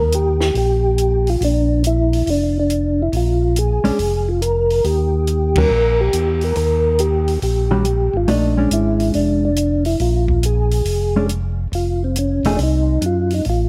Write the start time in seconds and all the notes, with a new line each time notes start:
Already playing: D#2 A#4
0.12 G4, closed hi-hat
0.41 snare
0.54 A#1 G4, open hi-hat
0.98 closed hi-hat
1.27 F4, open hi-hat
1.41 A#1 D4, open hi-hat
1.84 E4, closed hi-hat
2.13 open hi-hat
2.26 F1 D4, open hi-hat
2.59 D4
2.70 closed hi-hat
3.02 E4
3.12 A#1, open hi-hat
3.17 F4
3.56 G#4, closed hi-hat
3.84 A#1 G#3 C#4 D4, open hi-hat
3.99 F1, open hi-hat
4.28 F4
4.42 A#4, closed hi-hat
4.70 open hi-hat
4.84 D#2 G4, open hi-hat
5.27 closed hi-hat
5.56 D#3 G3 C#4 F#4 A#4, kick, ride
5.70 A#1
6.01 G4
6.13 E2, closed hi-hat
6.41 A#4, open hi-hat
6.55 D#2 A#4, open hi-hat
6.99 G4, closed hi-hat
7.28 open hi-hat
7.42 A#1 G4, open hi-hat
7.71 D#3 G3 C#4 F#4
7.85 closed hi-hat
8.14 G#1 F4
8.28 A#1 A3 D4 D#4, open hi-hat
8.57 G#3 C#4 D4
8.71 G#1 E4, closed hi-hat
9.00 open hi-hat
9.14 F1 D4, open hi-hat
9.45 D4
9.56 closed hi-hat
9.85 E4, open hi-hat
10.00 A#1 F4, open hi-hat
10.28 kick
10.43 G#4, closed hi-hat
10.71 open hi-hat
10.85 F1, open hi-hat
11.16 G#3 C#4 D4
11.29 closed hi-hat
11.72 F1 F4, open hi-hat
12.04 C4
12.16 C#4, closed hi-hat
12.43 E1 F3 A3 D#4 G#4, open hi-hat
12.57 C2 D4, open hi-hat
12.63 D#4
13.01 F#2, closed hi-hat
13.06 F4
13.30 D#4, open hi-hat
13.45 A1, open hi-hat
13.49 F4